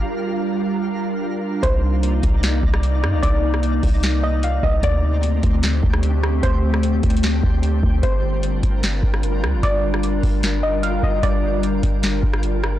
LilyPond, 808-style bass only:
\new Staff \with { instrumentName = "808-style bass" } { \clef bass \time 4/4 \key g \minor \tempo 4 = 150 r1 | c,4. c,4 c,4 g,16 c,16 | c,4. c,2 c,8 | d,4. d,4 d,4. |
d,4. d,4 d,4 d,8 | g,,4. g,,4 g,,4 d,16 g,,16 | g,,4. g,,2 g,,8 | g,,4. g,,4 g,,4. | }